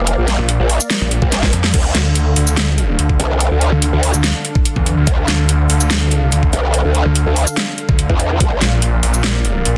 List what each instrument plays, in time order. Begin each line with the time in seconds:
Already playing: wobble bass F1, supersaw synth A#3 A#4 D5 F5
0.07 closed hi-hat
0.18 wobble bass A#1
0.28 snare, closed hi-hat
0.39 detuned saw bass A#1
0.49 closed hi-hat
0.60 wobble bass A#1
0.69 open hi-hat
0.80 shaker
0.90 snare, closed hi-hat
1.01 detuned saw bass A#1
1.11 closed hi-hat
1.22 wobble bass A#1, kick
1.32 snare, closed hi-hat
1.43 kick, snare
1.53 detuned saw bass F2, closed hi-hat
1.64 snare
1.74 wobble bass D2, supersaw synth D3 D4 A4 F5, kick, closed hi-hat, crash
1.95 detuned saw bass D2, snare, closed hi-hat
2.15 closed hi-hat
2.36 detuned saw bass D2, open hi-hat
2.47 shaker
2.57 snare, closed hi-hat
2.78 closed hi-hat
2.99 detuned saw bass D2, closed hi-hat
3.09 kick
3.19 wobble bass C2, closed hi-hat
3.40 closed hi-hat
3.51 wobble bass D2
3.61 closed hi-hat
3.72 detuned saw bass D2
3.82 closed hi-hat
3.93 wobble bass D2
4.03 open hi-hat
4.14 detuned saw bass D2, shaker
4.24 snare, closed hi-hat
4.45 closed hi-hat
4.55 kick
4.65 closed hi-hat
4.76 detuned saw bass E2, kick
4.86 closed hi-hat
4.97 detuned saw bass D2
5.07 wobble bass D2, kick, closed hi-hat
5.28 detuned saw bass D2, snare, closed hi-hat
5.49 closed hi-hat
5.70 detuned saw bass D2, open hi-hat
5.80 shaker
5.90 snare, closed hi-hat
6.11 detuned saw bass C#2, closed hi-hat
6.32 detuned saw bass D2, closed hi-hat
6.43 kick
6.53 wobble bass C2, closed hi-hat
6.74 closed hi-hat
6.85 wobble bass D2
6.95 closed hi-hat
7.05 detuned saw bass D2
7.15 closed hi-hat
7.26 wobble bass D2
7.36 open hi-hat
7.47 shaker
7.57 snare, closed hi-hat
7.78 closed hi-hat
7.89 detuned saw bass D2, kick
7.99 closed hi-hat
8.10 wobble bass E2, kick
8.20 closed hi-hat
8.40 wobble bass A#1, supersaw synth A#3 A#4 D5, kick, closed hi-hat
8.61 detuned saw bass A#1, snare, closed hi-hat
8.82 closed hi-hat
9.03 detuned saw bass A#1, open hi-hat
9.14 shaker
9.24 snare, closed hi-hat
9.45 closed hi-hat
9.65 detuned saw bass A#1, closed hi-hat